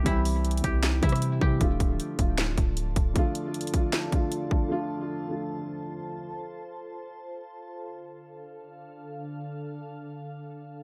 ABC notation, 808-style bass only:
X:1
M:4/4
L:1/8
Q:1/4=155
K:Dm
V:1 name="808-style bass" clef=bass
C,,3 C,,2 C,2 C, | D,,, D,,, z D,,,2 D,,,2 D,,, | z8 | z8 |
z8 | z8 | z8 |]